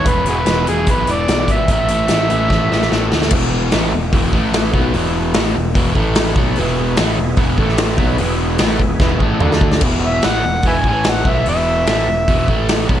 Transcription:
0.05 E1 E2 B2 E3 B4, kick, closed hi-hat
0.26 E1 E2 B2 E3 F#4 G#4 B4, closed hi-hat
0.45 E1 E2 B2 E3, snare, closed hi-hat
0.66 E1 E2 B2 E3 G#4, closed hi-hat
0.86 B1 E2 B2 E3, kick, closed hi-hat
0.91 B4
1.07 E1 E2 B2 E3, closed hi-hat
1.11 D5
1.27 B1 E2 B2 E3, snare, closed hi-hat
1.48 G#1 E2 B2 E3 E5, kick, closed hi-hat
1.68 A1 A2 E3 A3, kick, closed hi-hat
1.72 E5
1.88 A1 A2 E3 A3, closed hi-hat
2.08 A1 A2 E3 A3, snare, closed hi-hat
2.29 A1 A2 E3 A3, closed hi-hat
2.48 A1 A2 E3 A3, kick, snare
2.70 A1 A2 E3 A3, snare
2.82 snare
2.90 A1 A2 E3 A3, snare
3.11 D2 A2 E3 A3, snare
3.22 snare
3.31 E1 E2 B2 E3, kick, crash
3.71 A1 A2 E3 A3, snare, open hi-hat
3.92 E1 E2 B2
4.13 E1 E2 B2 E3, kick, open hi-hat
4.33 A1 A2 E3 A3, kick
4.53 snare, open hi-hat
4.74 B1 B2 F#3 B3, kick
4.92 E1 E2 B2 E3, open hi-hat
5.34 A1 A2 E3 A3, snare, open hi-hat
5.55 E1 E2 B2
5.74 E1 E2 B2 E3, kick, open hi-hat
5.94 A1 A2 E3 A3, kick
6.15 snare, open hi-hat
6.36 B1 B2 F#3 B3, kick
6.55 E1 E2 B2 E3 B3 E4 G#4, open hi-hat
6.97 A1 A2 E3 A3, snare, open hi-hat
7.18 E1 E2 B2
7.36 E1 E2 B2 E3, kick, open hi-hat
7.58 A1 A2 E3 A3 E4 A4, kick
7.69 snare
7.78 snare, open hi-hat
7.97 B1 B2 F#3 B3 E4 G#4, kick
8.18 E1 E2 B2 E3, open hi-hat
8.58 A1 A2 E3 A3, snare, open hi-hat
8.79 E1 E2 B2, kick
9.00 E1 E2 B2 E3, kick, snare
9.20 A1 A2 E3 A3, kick
9.40 D2 D3 A3 D4 A4, mid tom
9.52 snare
9.61 kick
9.72 snare
9.81 E1 E2 B2 E3, kick, crash
10.07 E5
10.22 A1 A2 E3 A3 F#5, snare, open hi-hat
10.45 E1 E2 B2
10.63 E1 E2 B2, kick, open hi-hat
10.67 E3 B4 E5 G#5
10.84 A1 A2 E3 A3, kick
10.89 G#5
11.04 snare, open hi-hat
11.09 F#5
11.25 B1 B2 F#3 B3 E5, kick
11.46 E1 E2 B2 E3 E5, open hi-hat
11.87 A1 A2 E3 A3, snare, open hi-hat
12.08 E1 E2 B2
12.28 E1 E2 B2 E3, kick, open hi-hat
12.48 A1 A2 E3 A3, kick
12.68 snare, open hi-hat
12.89 B1 B2 F#3 B3, kick

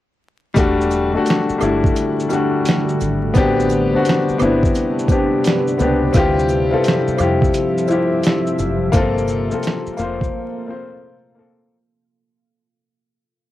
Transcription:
0.54 E1 D3 G3 A3 D4 F#4, kick, closed hi-hat, maracas, shaker
0.58 F#4
0.81 shaker
0.91 maracas, shaker
1.13 G3 A3 D4
1.17 F#4
1.26 closed hi-hat, shaker, maracas
1.30 finger snap, snare
1.49 muted fingered electric bass stroke, shaker
1.58 G1 G3 A3 D4, high woodblock, maracas, shaker
1.62 E4
1.84 kick, shaker
1.96 closed hi-hat, maracas, shaker
2.20 shaker
2.29 G3 A3 D4, maracas, shaker
2.33 F#4
2.65 snare, closed hi-hat, shaker, maracas
2.70 finger snap
2.89 shaker
3.01 G#1, maracas, shaker
3.34 A1 C3 B3 C4 D4 B4, kick, closed hi-hat, maracas, shaker
3.38 G4
3.60 shaker
3.70 maracas, shaker
3.92 B3 C4 D4
3.96 F#4
4.05 closed hi-hat, shaker, maracas
4.09 finger snap, snare
4.29 muted fingered electric bass stroke, shaker
4.38 G1 B3 C4 D4, high woodblock, maracas, shaker
4.42 E4
4.63 kick, shaker
4.75 closed hi-hat, maracas, shaker
4.99 shaker
5.08 B3 C4 D4, kick, maracas, shaker
5.12 G4
5.44 snare, closed hi-hat, shaker, maracas
5.48 finger snap
5.67 shaker
5.78 C#2 B3 C4 D4, maracas, shaker
5.82 G4
6.13 D2 F3 C4 E4 F4 E5, kick, closed hi-hat, maracas, shaker
6.17 G4
6.39 shaker
6.49 maracas, shaker
6.70 C4 E4 F4 A4
6.84 closed hi-hat, shaker, maracas
6.88 finger snap, snare
7.08 muted fingered electric bass stroke, shaker
7.17 F2 C4 E4 F4, high woodblock, maracas, shaker
7.21 G4
7.42 kick, shaker
7.54 closed hi-hat, maracas, shaker
7.78 shaker
7.87 C4 E4 F4, maracas, shaker
7.91 G4
8.23 snare, closed hi-hat, shaker, maracas
8.28 finger snap
8.47 shaker
8.58 F#1, maracas, shaker
8.92 G1 A#3 C4 F4 A4, kick, closed hi-hat, maracas, shaker
8.96 A4
9.18 shaker
9.28 maracas, shaker
9.50 A#3 C4 F4, shaker
9.54 A4
9.63 closed hi-hat, shaker, maracas
9.67 finger snap, snare
9.86 muted fingered electric bass stroke, shaker
9.97 F1 A#3 C4 F4 C5, maracas, shaker
10.21 kick, shaker
10.66 A#3 C4 F4
10.70 C5
11.35 A#3 C4 F4
11.39 A4

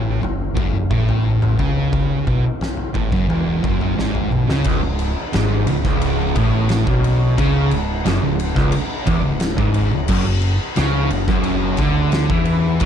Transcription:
Already playing: A1 A2
0.21 F#1 F#2, floor tom
0.55 F#1 F#2, kick, floor tom, mid tom
0.73 F#1 F#2
0.90 A1 A2, kick, mid tom
1.09 floor tom
1.42 floor tom, mid tom
1.59 C#2 C#3, kick, floor tom
1.93 kick, floor tom
2.26 B1 B2, kick, floor tom, mid tom
2.61 snare, floor tom
2.77 floor tom
2.94 A1 A2, kick, floor tom
3.12 F#1 F#2, kick
3.29 E1 E2, floor tom
3.64 F#1 F#2, kick, floor tom, mid tom
3.81 floor tom
3.98 G#1 G#2, snare
4.15 floor tom, mid tom
4.32 B1 B2, high tom
4.49 C#2 C#3, snare
4.64 C#1 C#2, kick, ride
4.82 C#1 C#2
4.99 ride
5.33 G#1 G#2, snare, ride
5.67 C#1 C#2, ride
5.85 C#1 C#2, kick, snare
6.01 ride
6.35 A1 A2, kick, ride
6.69 snare, ride
6.87 B1 B2, kick
7.04 ride
7.38 C#2 C#3, kick, ride
7.71 C#1 C#2, ride
8.04 F#1 F#2, snare, ride
8.21 C#1 C#2
8.40 ride
8.56 C#1 C#2, kick, snare
8.72 ride
9.06 E1 E2, kick, ride
9.23 C#1 C#2
9.40 snare, ride
9.58 G#1 G#2, kick
9.74 ride
9.92 C#1 C#2
10.08 F#1 F#2, kick, crash
10.25 F#1 F#2
10.42 ride
10.76 C#2 C#3, snare, ride
11.10 F#1 F#2, ride
11.27 F#1 F#2, kick, snare
11.44 ride
11.77 D2 D3, kick, ride
12.12 snare, ride
12.29 E2 E3, kick
12.45 ride
12.80 F#2 F#3, kick, ride

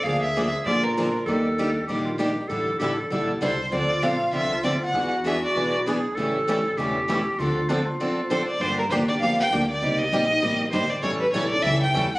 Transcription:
0.03 D2 D3 F3 A#3 D4 G#4 F5
0.22 E5
0.36 D3 F3 A#3 D4 G#4
0.65 A#2 D3 F3 A#3 D4 F4 G#4 D5
0.84 A#4
0.97 D3 F3 A#3 D4 G#4
1.26 D#2 D#3 G3 A#3 D4 G4 A4
1.58 D#3 G3 A#3 D4 G4
1.87 A#1 D#3 G3 A#3 D4 G4
2.05 F4
2.18 D#3 G3 A#3 D4 G4
2.48 A1 D3 G3 D4 E4 A4
2.78 A1 D3 G3 D4 E4 G4 A4
2.97 A4
3.10 A#1 D3 G3 D4 E4 A4
3.41 C2 D3 G3 D4 E4 A4 C5
3.70 D2 D3 F3 C4 D4 F4 A4
3.75 D5
4.02 A#1 D3 F3 C4 D4 A4 F5
4.33 C2 D3 F3 C4 D4 A4 E5
4.63 D2 D3 F3 C4 D4 A4 D5
4.84 F#5
4.93 E2 E3 B3 D4 F#4 G#4 B4
5.24 E3 B3 D4 G#4 B4 E5
5.45 D5
5.55 B1 E3 B3 D4 G#4 B4
5.86 E3 B3 D4 G#4 B4
6.15 A1 C#3 E3 A3 C#4 G4 A4
6.19 G3 E4 A4
6.48 C#3 E3 G3 A3 C#4 E4 G4 A4
6.77 E1 C#3 E3 G3 A3 C#4 E4 G4 A4
7.08 C#3 E3 G3 A3 C#4 E4 G4 A4
7.39 D2 D3 F3 C4 D4 F4 A4
7.69 D3 F3 C4 D4 A4
7.86 F4
8.00 D3 F3 C4 D4 A4
8.30 D3 F3 C4 D4 A4 C5
8.49 D5
8.60 G2 D3 F3 A#3 D4 G4 C5
8.79 A#4
8.90 D#2 D3 F3 A#3 D4 G4 C5
9.08 A#3 D4 G4 D5
9.20 F2 D3 F3 A#3 D4 G4 F5
9.39 G5, muted upright bass stroke
9.50 D2 D3 F3 A#3 D4 G4
9.71 D5
9.81 C2 C3 G3 A#3 D#4 G4
9.99 D#5
10.11 A#1 C3 G3 A#3 D#4 G4
10.30 A#3 D#4 G4
10.42 A1 C3 G3 A#3 D#4 G4
10.72 G1 C3 G3 A#3 D#4 G4 C5
10.90 D5
11.02 A1 E3 G3 C#4 E4 A4 C#5
11.21 B4
11.33 B1 E3 G3 C#4 E4 A4 C#5
11.49 A4 D5
11.54 C#4 E4
11.62 C#2 E3 G3 E5
11.66 C#4 E4 A4
11.83 G5
11.94 E2 E3 G3 C#4 E4 A4
12.13 F#5, muted upright bass stroke

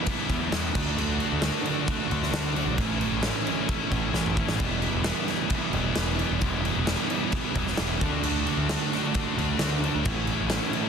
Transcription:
Already playing: E3 G3 B3 E4
0.04 E3 G3 B3 E4, kick, crash
0.28 E2 E3 G3 B3 E4, kick, crash
0.52 E2 E3 G3 B3 E4, snare, crash
0.73 D2 D3 A3 D4 F#4, kick, crash
0.96 D3 A3 D4 F#4, crash
1.18 A3 D4 F#4, crash
1.32 D2
1.40 D3 A3 D4 F#4, snare, crash
1.63 A3 D4 F#4, crash
1.86 D3 A3 D4 F#4, kick, crash
2.08 D2 D3 A3 D4 F#4, crash
2.23 snare
2.30 D2 D3 A3 D4 F#4, snare, crash
2.53 A3 D4 F#4, crash
2.66 B1
2.76 A1 A2 E3 A3 C#4 E4, kick, crash
3.00 A3 C#4 E4, crash
3.12 A1
3.22 A2 E3 A3 C#4 E4, snare, crash
3.45 A3 C#4 E4, crash
3.68 E3 A3 C#4 E4, kick, crash
3.91 A1 A2 E3 A3 C#4 E4, kick, crash
4.13 A1 A2 E3 A3 C#4 E4, snare
4.26 mid tom
4.37 A3 C#4 E4, kick
4.48 A1, snare
4.59 E1 E3 G3 B3 E4, kick, crash
4.82 G3 B3 E4, crash
4.93 E1
5.04 E3 G3 B3 E4, snare, crash
5.28 G3 B3 E4, snare, crash
5.50 E3 G3 B3, kick, crash
5.54 E4
5.73 E1 E3 G3 B3 E4, crash
5.96 E1 E3 G3 B3 E4, snare, crash
6.18 G3 B3 E4, crash
6.30 E1
6.41 E1 E3 G3 B3 E4, kick, crash
6.63 G3 B3 E4, crash
6.77 E1
6.87 E3 G3 B3 E4, snare, crash
7.07 G3 B3 E4, crash
7.31 E3 G3 B3 E4, kick, crash
7.54 E1 E3 G3 B3 E4, kick, crash
7.67 snare
7.77 E1 E3 G3 B3 E4, snare, crash
8.00 D2 D3 A3 D4 F#4, kick, crash
8.23 D3 A3 D4 F#4, crash
8.46 A3 D4 F#4, crash
8.57 D2
8.68 D3 A3 D4 F#4, snare, crash
8.91 A3 D4 F#4, snare, crash
9.13 D3 A3 D4 F#4, kick, crash
9.35 D2 D3 A3 D4 F#4, crash
9.59 D2 D3 A3 D4 F#4, snare, crash
9.82 A3 D4 F#4, crash
9.95 D2
10.04 A1 A2 E3 A3 C#4 E4, kick, crash
10.27 A3 C#4 E4, crash
10.41 A1
10.50 A2 E3 A3 C#4, snare, crash
10.54 E4
10.73 A3 C#4 E4, crash

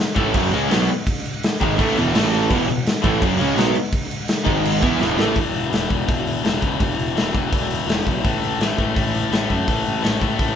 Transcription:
0.16 A1 A2 E3 A3, kick, crash
0.34 F#1 F#2 C#3 F#3, kick, crash
0.52 C#2 C#3 G#3 C#4, crash
0.70 B1 B2 F#3 B3, snare, crash
0.88 crash
1.07 kick, crash
1.26 crash
1.43 snare, crash
1.61 G#1 G#2 D#3 G#3, kick, crash
1.76 A1 A2 E3 A3, kick, crash
1.95 E2 B2 E3, crash
1.99 E1
2.14 A1 A2 E3 A3, snare, crash
2.33 crash
2.49 E1 E2 B2 E3, kick, crash
2.66 E2 B2, crash
2.71 E1
2.86 snare, crash
3.02 A1 A2 E3 A3, kick, crash
3.18 F#1 F#2 C#3 F#3, kick
3.23 F#2, crash
3.38 C#2 C#3 G#3 C#4, crash
3.55 B1 B2 F#3 B3, snare, crash
3.75 crash
3.92 kick, crash
4.11 crash
4.28 snare, crash
4.44 G#1 G#2 D#3 G#3, kick, crash
4.65 crash
4.82 E2 E3 B3 E4, kick, crash
4.99 E1 E2 B2 E3, snare
5.16 A1 A2 E3 A3, snare
5.35 E1 E2 B2 E3, kick, open hi-hat
5.54 E1, open hi-hat
5.69 E1 E2 B2 E3, open hi-hat
5.74 snare
5.89 E1 E2 B2 E3, kick, open hi-hat
6.06 E1 E2 B2 E3, kick, open hi-hat
6.27 open hi-hat
6.44 E1 E2 B2 E3, snare, open hi-hat
6.61 C#2 E2 B2 E3, kick, open hi-hat
6.79 E1 E2 B2 E3, kick, open hi-hat
6.99 E1, open hi-hat
7.15 E1 E2 B2 E3, snare, open hi-hat
7.32 E1 E2 B2 E3, kick, open hi-hat
7.51 E1 E2 B2 E3, kick, open hi-hat
7.71 open hi-hat
7.86 E1 E2 B2 E3, open hi-hat
7.90 snare
8.05 B1 E2 B2 E3, kick, open hi-hat
8.23 A1 A2 E3 A3, kick, open hi-hat
8.42 A1, open hi-hat
8.60 A1 A2 E3 A3, snare, open hi-hat
8.76 A1 A2 E3 A3, kick, open hi-hat
8.94 A1 A2 E3 A3, kick, open hi-hat
9.15 open hi-hat
9.31 A1 A2 E3 A3, snare, open hi-hat
9.49 F#2 A2 E3 A3, kick, open hi-hat
9.68 A1 A2 E3 A3, kick, open hi-hat
9.86 A1, open hi-hat
10.02 A2 E3 A3, snare, open hi-hat
10.06 A1
10.20 A1 A2 E3 A3, kick, open hi-hat
10.37 A1 A2 E3 A3, kick, open hi-hat

